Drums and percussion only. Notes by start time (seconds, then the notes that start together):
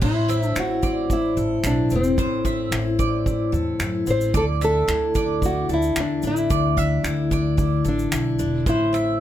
0.02 kick, crash
0.30 finger snap, shaker
0.43 shaker
0.56 finger snap, shaker
0.83 kick, shaker
1.10 kick, shaker
1.37 shaker
1.64 finger snap, shaker
1.90 shaker
2.04 shaker
2.18 kick, shaker
2.45 kick, shaker
2.72 finger snap, shaker
2.99 kick, shaker
3.26 kick, shaker
3.54 shaker
3.80 finger snap, shaker
4.06 shaker
4.21 shaker
4.34 kick, shaker
4.62 finger snap, shaker
4.89 finger snap, shaker
5.15 kick, shaker
5.42 kick, shaker
5.69 shaker
5.82 shaker
5.96 finger snap, shaker
6.22 shaker
6.37 shaker
6.50 kick, shaker
6.77 kick, shaker
7.04 finger snap, shaker
7.31 kick, shaker
7.58 kick, shaker
7.85 shaker
7.99 shaker
8.12 finger snap, shaker
8.39 shaker
8.66 kick, shaker
8.94 finger snap, shaker